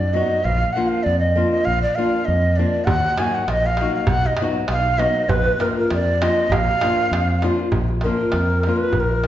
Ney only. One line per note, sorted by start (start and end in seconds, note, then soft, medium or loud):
0.00 0.15 D5 medium
0.13 0.46 D#5 loud
0.45 0.74 F5 loud
0.72 0.90 F#5 medium
0.88 1.05 F5 medium
1.03 1.19 D5 loud
1.19 1.49 D#5 medium
1.51 1.66 D#5 loud
1.65 1.82 F5 loud
1.82 1.97 D5 medium
1.95 2.27 F5 medium
2.25 2.58 D#5 medium
2.56 2.86 D5 loud
2.84 3.19 F#5 loud
3.18 3.36 G#5 loud
3.35 3.51 F#5 medium
3.50 3.67 D#5 loud
3.66 3.94 F5 loud
3.95 4.11 F5 medium
4.10 4.28 F#5 loud
4.26 4.40 D#5 medium
4.72 5.00 F5 loud
4.98 5.30 D#5 loud
5.29 5.62 B4 loud
5.61 5.77 A#4 medium
5.78 5.91 A#4 medium
5.93 6.23 D5 loud
6.21 6.54 D#5 loud
6.52 7.43 F5 loud
8.03 8.78 A#4 medium
8.77 9.01 B4 loud
9.00 9.27 A#4 medium